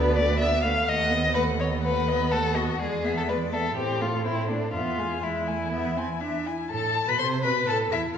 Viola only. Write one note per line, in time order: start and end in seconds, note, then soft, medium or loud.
0.00 0.18 B3 medium
0.17 0.42 A3 medium
0.40 0.65 B3 medium
0.63 0.87 A3 soft
0.87 1.12 A3 medium
1.11 1.37 B3 soft
1.35 1.61 A3 soft
1.59 1.83 B3 soft
1.83 2.09 A3 soft
2.07 2.34 B3 soft
2.32 2.57 A3 soft
2.56 2.80 B3 soft
2.80 3.06 G#3 medium
3.04 3.30 B3 soft
3.28 3.54 G#3 soft
3.52 3.76 B3 soft
3.77 4.02 C4 soft
4.01 4.27 A3 soft
4.25 4.51 C4 soft
4.49 4.73 A3 soft
4.74 5.00 B3 soft
4.98 5.22 G#3 soft
5.23 5.49 G#3 soft
5.48 5.72 A3 soft
5.72 5.96 B3 soft
5.97 6.05 C4 soft
6.22 6.48 D4 soft
6.46 6.71 E4 soft
6.71 7.05 A4 medium
7.08 7.13 B4 medium
7.20 7.43 C5 medium
7.44 7.70 B4 medium
7.69 7.94 A4 soft
7.93 8.18 E4 soft